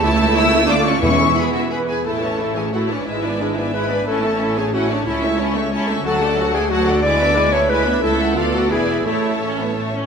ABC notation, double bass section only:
X:1
M:3/4
L:1/8
Q:1/4=180
K:A
V:1 name="Double bass section" clef=bass
C,,4 D,,2 | E,,4- E,, z | A,,,6 | G,,,6 |
A,,,6 | C,,6 | D,,6- | D,,6 |
C,,2 D,,2 E,,,2 | A,,,4- A,,, z |]